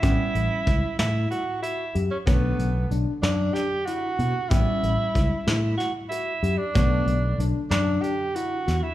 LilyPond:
<<
  \new Staff \with { instrumentName = "Tenor saxophone" } { \time 7/8 \key b \minor \tempo 4 = 94 e'4. e'8 fis'8 e'8. cis'16 | b4 r8 d'8 g'8 fis'4 | e'2 fis'8 e'8. d'16~ | d'4 r8 d'8 g'8 fis'8. e'16 | }
  \new Staff \with { instrumentName = "Tine electric piano" } { \time 7/8 \key b \minor cis'4 e'8 e'4 fis'8 g'8 | b4 d'8 d'4 e'8 fis'8 | cis'4 e'8 e'4 fis'8 g'8 | b4 d'8 d'4 e'8 fis'8 | }
  \new Staff \with { instrumentName = "Hollow-body jazz guitar" } { \time 7/8 \key b \minor <g b cis'>2.~ <g b cis'>8 | <d a cis''>2.~ <d a cis''>8 | <g b cis'>2.~ <g b cis'>8 | <d a cis''>2.~ <d a cis''>8 | }
  \new Staff \with { instrumentName = "Fretless electric bass" } { \clef bass \time 7/8 \key b \minor a,,16 r16 a,,16 r16 cis,16 r16 a,8 r4 fis,16 r16 | b,,8 b,,8 b,,16 r16 fis,8 r4 b,16 r16 | a,,16 r16 a,,16 r16 cis,16 r16 a,8 r4 fis,16 r16 | b,,8 b,,8 b,,16 r16 fis,8 r4 e,16 r16 | }
  \new DrumStaff \with { instrumentName = "Drums" } \drummode { \time 7/8 <hh bd>8 hh8 <hh bd>8 <hh sn>8 hh8 hh8 hh8 | <hh bd>8 hh8 hh8 <hh sn>8 <hh sn>8 hh8 hh8 | <hh bd>8 hh8 <hh bd>8 <hh sn>8 <hh sn>8 hh8 hh8 | <hh bd>8 hh8 hh8 <hh sn>8 hh8 hh8 <hh sn>8 | }
>>